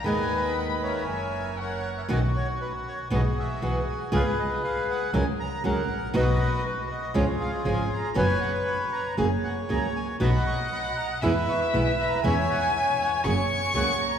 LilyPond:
<<
  \new Staff \with { instrumentName = "Violin" } { \time 4/4 \key fis \mixolydian \tempo 4 = 118 b''2 gis''4 fis''4 | \key b \major r1 | r1 | r1 |
r1 | fis''2 e''2 | gis''2 cis'''2 | }
  \new Staff \with { instrumentName = "Bandoneon" } { \time 4/4 \key fis \mixolydian << { gis''4 fis''8 e''4. fis''8. e''16 | \key b \major dis''8 cis''8 b'8 cis''8 dis''8 e''8 fis''8 gis''8 | eis''8 dis''8 eis''8 fis''8 gis''8 ais''8 fis''4 | dis''4 b'8 dis''8 cis''8 eis''8 gis''8 ais''8 |
gis''8 fis''8 b''8 ais''8 gis''8 fis''8 ais''8 gis''8 | b''8 cis'''8 b''8 ais''8 gis''8 cis'''8 b''8 ais''8 | gis''8 fis''8 e''8 fis''8 gis''4 fis''8 ais''8 | } \\ { <b' dis''>4. <ais' cis''>4. <ais' cis''>4 | fis'2 <fis' gis'>2 | <gis' b'>2 r4 ais'4 | <fis' b'>2 <eis' gis'>2 |
<b' cis''>2 cis''2 | <dis'' fis''>2 <b' e''>2 | <cis'' e''>2 cis''2 | } >> }
  \new Staff \with { instrumentName = "Nylon-string guitar" } { \time 4/4 \key fis \mixolydian <dis gis b>2 r2 | \key b \major <b, dis cis' fis'>8 r4. <b, e gis b fis'>8 r8 <b, e gis b fis'>8 r8 | <cis gis b eis' gis'>8 r4. <cis fis gis cis' fis' ais'>8 r8 <cis fis gis cis' fis' ais'>8 r8 | <b, fis b dis' fis'>8 r4. <cis eis gis cis' eis'>8 r8 <cis eis gis cis' eis'>8 r8 |
<b, fis b cis' fis'>8 r4. <fis ais cis' gis'>8 r8 <fis ais cis' gis'>8 r8 | <b, fis b dis' fis'>8 r4. <b, e gis b e'>8 r8 <b, e gis b e'>8 r8 | <e gis cis' e'>8 r4. <fis ais cis' gis'>8 r8 <fis ais cis' gis'>8 r8 | }
  \new Staff \with { instrumentName = "Double bass" } { \clef bass \time 4/4 \key fis \mixolydian dis,2 fis,,2 | \key b \major b,,8 r4. b,,8 r8 b,,8 r8 | cis,8 r4. cis,8 r8 cis,8 a,,8 | b,,8 r4. cis,8 r8 gis,,8 r8 |
fis,,8 r4. fis,,8 r8 cis,8 r8 | b,,8 r4. e,8 r8 b,,8 r8 | e,8 r4. fis,,8 r8 cis,8 r8 | }
>>